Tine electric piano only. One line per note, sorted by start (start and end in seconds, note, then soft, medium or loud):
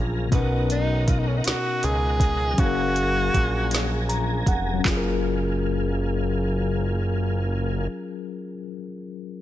0.00 0.26 F#3 medium
0.00 0.27 C#4 medium
0.00 0.28 F4 medium
0.00 0.30 G#4 medium
0.00 0.35 A#4 medium
0.27 2.52 B2 medium
0.27 2.54 B3 medium
0.33 2.55 C#4 medium
0.33 2.57 D#4 medium
0.39 2.58 A#4 medium
2.53 4.72 F#3 medium
2.53 4.78 C#4 medium
2.59 4.83 G#4 medium
2.59 4.81 F5 medium
2.65 4.84 A#4 medium
4.09 4.44 A#5 medium
4.48 4.83 F#5 medium
4.73 8.51 F#3 medium
4.79 8.54 C#4 medium
4.85 8.57 F4 medium
4.91 8.60 G#4 medium
4.97 8.63 A#4 medium